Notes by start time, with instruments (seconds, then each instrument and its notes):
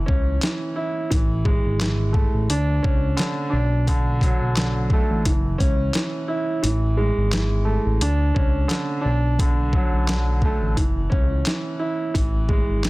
Already playing: upright piano E3
0.06 analog synth bass C#2, upright piano C#4, kick
0.42 upright piano E3, snare, clap, closed hi-hat
0.76 upright piano E4
1.10 analog synth bass A1, upright piano E3, kick, closed hi-hat
1.45 upright piano G#3, kick
1.65 analog synth bass G#1
1.81 upright piano E3, snare, clap, closed hi-hat
2.13 upright piano A3, kick
2.34 analog synth bass A1
2.49 analog synth bass D2, upright piano D4, closed hi-hat
2.83 analog synth bass C#2, upright piano C#4, kick
3.17 upright piano D3, snare, clap, closed hi-hat
3.50 analog synth bass B1, upright piano D4
3.87 upright piano D3, kick, closed hi-hat
4.21 upright piano F#3, kick, closed hi-hat
4.41 analog synth bass B1
4.57 upright piano D3, snare, clap, closed hi-hat
4.90 upright piano A3, kick
5.10 analog synth bass A1
5.25 analog synth bass F#1, upright piano E3, kick, closed hi-hat
5.58 analog synth bass C#2, upright piano C#4, kick, closed hi-hat
5.94 upright piano E3, snare, clap, closed hi-hat
6.28 upright piano E4
6.63 analog synth bass A1, upright piano E3, closed hi-hat
6.97 upright piano G#3
7.17 analog synth bass G#1
7.32 upright piano E3, snare, clap, closed hi-hat
7.65 upright piano A3
7.86 analog synth bass A1
8.01 analog synth bass D2, upright piano D4, closed hi-hat
8.35 analog synth bass C#2, upright piano C#4, kick
8.68 upright piano D3, snare, clap, closed hi-hat
9.01 analog synth bass B1, upright piano D4
9.39 upright piano D3, kick, closed hi-hat
9.73 upright piano F#3, kick
9.93 analog synth bass B1
10.08 upright piano D3, snare, clap, closed hi-hat
10.42 upright piano A3, kick
10.62 analog synth bass A1
10.77 analog synth bass F#1, upright piano E3, kick, closed hi-hat
11.10 analog synth bass C#2, upright piano C#4, kick
11.46 upright piano E3, snare, clap, closed hi-hat
11.79 upright piano E4
12.14 analog synth bass A1, upright piano E3, kick, closed hi-hat
12.49 upright piano G#3, kick
12.69 analog synth bass G#1
12.84 upright piano E3, snare, clap, closed hi-hat